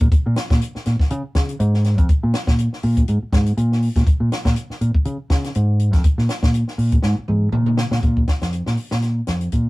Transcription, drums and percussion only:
0.01 kick, closed hi-hat
0.12 kick, closed hi-hat
0.36 snare, closed hi-hat
0.50 kick, snare, closed hi-hat
0.62 closed hi-hat
0.75 snare
0.86 snare, closed hi-hat
1.00 kick, snare
1.10 closed hi-hat
1.35 kick, snare, closed hi-hat
1.49 closed hi-hat
1.60 closed hi-hat
1.74 snare
1.84 snare, closed hi-hat
1.98 kick, closed hi-hat
2.09 kick, closed hi-hat
2.34 snare, closed hi-hat
2.47 kick, snare
2.59 closed hi-hat
2.73 snare
2.83 open hi-hat
2.97 kick, closed hi-hat
3.08 closed hi-hat
3.33 kick, snare, closed hi-hat
3.46 closed hi-hat
3.57 closed hi-hat
3.72 snare
3.82 open hi-hat
3.96 kick, snare, closed hi-hat
4.07 kick, closed hi-hat
4.32 snare, closed hi-hat
4.45 kick, snare, closed hi-hat
4.56 closed hi-hat
4.70 snare
4.81 closed hi-hat
4.94 kick
5.05 closed hi-hat
5.30 kick, snare, closed hi-hat
5.44 snare, closed hi-hat
5.55 closed hi-hat
5.80 closed hi-hat
5.93 kick, snare, closed hi-hat
6.04 kick, closed hi-hat
6.18 snare
6.29 snare, closed hi-hat
6.43 kick, snare
6.54 closed hi-hat
6.68 snare
6.79 open hi-hat
6.92 kick, closed hi-hat
7.02 snare
7.28 mid tom
7.52 mid tom
7.66 mid tom
7.77 snare
7.92 snare
8.03 kick, closed hi-hat
8.17 kick
8.28 kick, snare, closed hi-hat
8.41 snare, closed hi-hat
8.53 closed hi-hat
8.66 snare
8.77 open hi-hat
8.91 snare
9.02 snare, closed hi-hat
9.27 snare, closed hi-hat
9.41 closed hi-hat
9.52 kick, closed hi-hat

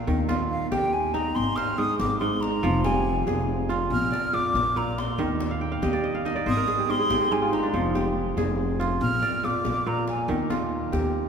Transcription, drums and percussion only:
0.08 djembe bass
0.29 djembe slap, djembe tone
0.72 djembe slap, djembe bass
0.83 djembe slap, djembe tone
1.04 djembe slap
1.15 djembe slap
1.26 djembe tone
1.37 djembe bass
1.47 djembe slap
1.58 djembe slap
1.78 djembe slap, djembe tone
1.89 djembe slap
2.00 djembe slap, djembe bass
2.10 djembe slap
2.31 djembe tone
2.43 djembe slap
2.64 djembe bass
2.84 djembe slap, djembe tone
3.28 djembe slap, djembe bass
3.38 djembe slap, djembe tone
3.70 djembe slap
3.81 djembe tone
3.92 djembe bass
4.14 djembe slap
4.34 djembe tone
4.55 djembe slap, djembe bass
4.88 djembe slap, djembe tone
4.98 djembe slap
5.19 djembe bass
5.40 djembe slap
5.83 djembe slap, djembe bass
5.95 djembe slap, djembe tone
6.26 djembe slap
6.36 djembe tone
6.47 djembe bass
6.68 djembe slap
6.89 djembe tone
7.10 djembe slap, djembe bass
7.43 djembe slap, djembe tone
7.53 djembe slap
7.74 djembe bass
7.95 djembe slap, djembe tone
8.38 djembe slap, djembe bass
8.48 djembe slap, djembe tone
8.81 djembe slap
8.92 djembe tone
9.01 djembe bass
9.23 djembe slap
9.44 djembe tone
9.65 djembe slap, djembe bass
9.97 djembe slap, djembe tone
10.08 djembe slap
10.29 djembe bass
10.40 djembe slap
10.50 djembe slap, djembe tone
10.93 djembe slap, djembe bass
11.03 djembe tone

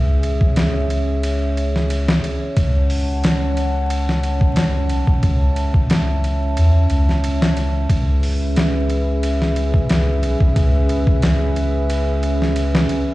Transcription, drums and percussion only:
0.23 ride
0.41 kick
0.56 snare, ride
0.90 ride
1.23 ride
1.57 ride
1.76 snare
1.90 ride
2.08 snare
2.24 ride
2.57 kick, ride
2.90 open hi-hat
3.24 snare, ride
3.57 ride
3.90 ride
4.09 snare
4.23 ride
4.41 kick
4.56 snare, ride
4.89 ride
5.07 kick
5.23 kick, ride
5.56 ride
5.74 kick
5.90 snare, ride
6.24 ride
6.57 ride
6.90 ride
7.09 snare
7.24 ride
7.42 snare
7.57 ride
7.89 kick, ride
8.23 open hi-hat
8.56 snare, ride
8.90 ride
9.23 ride
9.42 snare
9.56 ride
9.74 kick
9.89 snare, ride
10.23 ride
10.40 kick
10.56 kick, ride
10.89 ride
11.07 kick
11.22 snare, ride
11.56 ride
11.90 ride
12.23 ride
12.42 snare
12.56 ride
12.75 snare
12.89 ride

